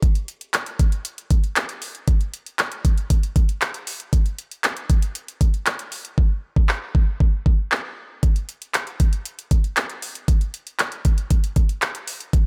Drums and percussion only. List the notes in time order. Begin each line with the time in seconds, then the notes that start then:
0.03 kick, closed hi-hat
0.15 closed hi-hat
0.28 closed hi-hat
0.41 closed hi-hat
0.54 clap, closed hi-hat
0.66 closed hi-hat
0.79 kick, closed hi-hat
0.92 closed hi-hat
1.05 closed hi-hat
1.18 closed hi-hat
1.30 kick, closed hi-hat
1.44 closed hi-hat
1.56 clap, closed hi-hat
1.69 closed hi-hat
1.82 open hi-hat
1.95 closed hi-hat
2.08 kick, closed hi-hat
2.21 closed hi-hat
2.34 closed hi-hat
2.46 closed hi-hat
2.59 clap, closed hi-hat
2.72 closed hi-hat
2.85 kick, closed hi-hat
2.98 closed hi-hat
3.10 kick, closed hi-hat
3.23 closed hi-hat
3.36 kick, closed hi-hat
3.49 closed hi-hat
3.62 clap, closed hi-hat
3.74 closed hi-hat
3.87 open hi-hat
4.00 closed hi-hat
4.13 kick, closed hi-hat
4.26 closed hi-hat
4.38 closed hi-hat
4.51 closed hi-hat
4.64 clap, closed hi-hat
4.77 closed hi-hat
4.90 kick, closed hi-hat
5.02 closed hi-hat
5.15 closed hi-hat
5.28 closed hi-hat
5.41 kick, closed hi-hat
5.54 closed hi-hat
5.66 clap, closed hi-hat
5.79 closed hi-hat
5.92 open hi-hat
6.05 closed hi-hat
6.18 kick
6.56 kick
6.69 clap
6.95 kick
7.20 kick
7.46 kick
7.72 clap
8.23 kick, closed hi-hat
8.36 closed hi-hat
8.49 closed hi-hat
8.62 closed hi-hat
8.74 clap, closed hi-hat
8.87 closed hi-hat
9.00 kick, closed hi-hat
9.13 closed hi-hat
9.25 closed hi-hat
9.39 closed hi-hat
9.51 kick, closed hi-hat
9.64 closed hi-hat
9.77 clap, closed hi-hat
9.90 closed hi-hat
10.02 open hi-hat
10.15 closed hi-hat
10.28 kick, closed hi-hat
10.41 closed hi-hat
10.54 closed hi-hat
10.67 closed hi-hat
10.79 clap, closed hi-hat
10.92 closed hi-hat
11.05 kick, closed hi-hat
11.18 closed hi-hat
11.30 kick, closed hi-hat
11.44 closed hi-hat
11.56 kick, closed hi-hat
11.69 closed hi-hat
11.82 clap, closed hi-hat
11.95 closed hi-hat
12.07 open hi-hat
12.21 closed hi-hat
12.33 kick, closed hi-hat